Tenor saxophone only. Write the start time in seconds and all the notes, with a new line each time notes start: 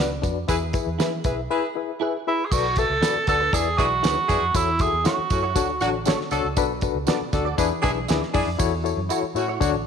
2.28 E4
2.45 G#4
2.52 F#4
2.78 A4
3.28 A4
3.54 G#4
3.78 F#4
4.56 E4
4.82 G#4
5.06 F#4